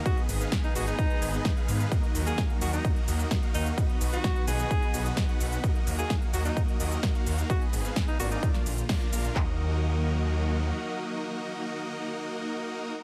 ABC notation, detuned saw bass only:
X:1
M:4/4
L:1/8
Q:1/4=129
K:Ebm
V:1 name="Detuned saw bass" clef=bass
z A,,, z A,,, z A,,, z A,, | z E,, z E,, z E,, z E,, | z =B,,, z B,,, z B,,, z B,,, | z E,, z E,, z E,, z E,, |
z A,,, z A,,, z B,,, z B,,, | E,,6 z2 | z8 |]